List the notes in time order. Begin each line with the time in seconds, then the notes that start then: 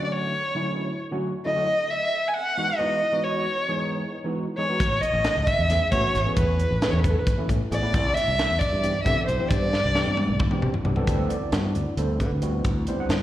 0.00 D3 F#3 A3 C#4 F#4
0.04 D5
0.12 C#5
0.55 D3 F#3 A3 C#4 E4
1.11 D3 F#3 A3 C#4 F#4
1.45 D3 F#3 A3 C#4 E4 D#5
1.55 D3 F#3 A3 C#4 F#4
1.91 E5
2.28 G#5
2.34 F#5
2.57 E3 G#3 B3 D#4 F#4
2.78 E3 G#3 B3 D#4 F#4 D#5
3.12 E3 G#3 B3 D#4 F#4
3.24 C#5
3.68 E3 G#3 B3 D#4 G#4
4.24 E3 G#3 B3 D#4 F#4
4.57 E3 G#3 B3 D#4 G#4 C#5
4.69 E3 G#3 B3 D#4 F#4
4.80 A1, kick, closed hi-hat
5.01 D#5, muted fingered electric bass stroke, closed hi-hat
5.13 A1
5.24 snare, closed hi-hat
5.37 C#2
5.47 E5, kick, closed hi-hat
5.59 E2
5.70 E3 A3 B3 C#4 G#4, snare, closed hi-hat
5.91 A2 E3 A3 B3 C#4 F#4 C#5, kick, closed hi-hat
6.15 G#1, snare, closed hi-hat
6.25 E3 A3 B3 C#4 G#4
6.37 E2 B4, kick, closed hi-hat
6.60 closed hi-hat
6.71 A1
6.82 E3 A3 B3 C#4 G#4, snare, closed hi-hat
6.91 E2 C#5
6.99 B4
7.04 kick, closed hi-hat
7.10 A4
7.16 A1 B4
7.27 kick, closed hi-hat
7.38 E3 A3 B3 C#4 E4, muted fingered electric bass stroke
7.49 A2, kick, closed hi-hat
7.71 A1 E3 A3 B3 C#4 G#4 D5, closed hi-hat
7.82 E3 A3 B3 C#4 B4
7.94 C2, kick, closed hi-hat
8.14 E5, muted fingered electric bass stroke, snare, closed hi-hat
8.28 C2
8.39 snare, closed hi-hat
8.51 E2
8.59 D5, kick, closed hi-hat
8.72 G2
8.83 E3 B3 C4 D4 G4, closed hi-hat
9.03 C3 E3 B3 C4 D4 A4 E5, kick, closed hi-hat
9.27 B1 C5, closed hi-hat
9.39 E3 B3 C4 D4 G4
9.48 G2 D5, kick, closed hi-hat
9.73 snare
9.84 C2
9.95 E3 B3 C4 D4 G4, snare
10.07 G2
10.17 high tom
10.29 C2
10.40 kick, mid tom
10.51 E3 B3 C4 D4 G4, muted fingered electric bass stroke, mid tom
10.62 C3, mid tom
10.74 floor tom
10.84 C2 E3 B3 C4 D4 G4, floor tom
10.96 E3 B3 C4 D4 A4, floor tom
11.07 D2 G3 B3 C4 E4 A4, kick, closed hi-hat
11.30 D5, closed hi-hat
11.51 G2 G3 B3 C4 E4 F#4, snare, closed hi-hat
11.75 D2, closed hi-hat
11.97 D2 G3 B3 C4 E4 A4 C5, closed hi-hat
12.20 D3 B4, kick, closed hi-hat
12.31 D2
12.42 G3 B3 C4 E4 F#4, closed hi-hat
12.65 D2, kick, closed hi-hat
12.87 G3 B3 C4 E4 C5, closed hi-hat
13.00 F#5
13.09 G2, snare, closed hi-hat